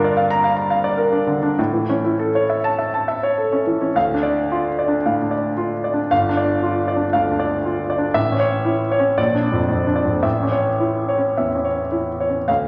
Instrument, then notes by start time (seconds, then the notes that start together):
grand piano
Already playing: G2 D3 D4 F4 A#4
0.04 D5
0.17 F5
0.30 A#5
0.44 F5
0.57 A#5
0.70 F5
0.84 D5
0.98 A#4
1.12 D4
1.27 D3
1.43 D4
1.59 A2
1.74 E3
1.89 C#4
2.05 E4
2.19 A4
2.35 C#5
2.50 E5
2.64 A5
2.79 E5
2.94 A5
3.08 E5
3.23 C#5
3.38 A4
3.52 C#4
3.67 E3
3.81 C#4
3.95 D2 F5
4.14 D4
4.23 D5
4.52 F4
4.79 D5
4.88 D4
5.06 A2 F5
5.22 D4
5.31 D5
5.57 F4
5.84 D5
5.94 D4
6.11 G1 F5
6.29 D4
6.37 D5
6.63 F4
6.88 D5
6.97 D4
7.13 D2 F5
7.31 D4
7.39 D5
7.65 F4
7.90 D5
7.98 D4
8.14 A1 E5
8.32 C#4
8.40 C#5
8.65 E4
8.91 C#5
9.00 C#4
9.18 A#1 D5
9.35 D4
9.43 D4
9.52 F2
9.69 F2
9.87 D4
9.96 D5
10.05 F2
10.23 A1 E5
10.42 C#4
10.51 C#5
10.80 E4
11.08 C#5
11.18 C#4
11.37 E2 E5
11.55 C#4
11.64 C#5
11.92 E4
12.20 C#5
12.29 C#4
12.48 D2 F5